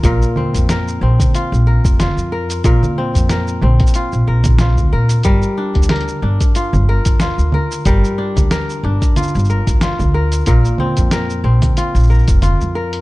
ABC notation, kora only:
X:1
M:4/4
L:1/8
Q:"Swing 16ths" 1/4=92
K:Bblyd
V:1 name="Kora"
[B,,B] C B C F B F B | [B,,B] C B C F B F B | [G,B] D B D F B F B | [G,B] D B D F B F B |
[B,,B] C B C F B F B |]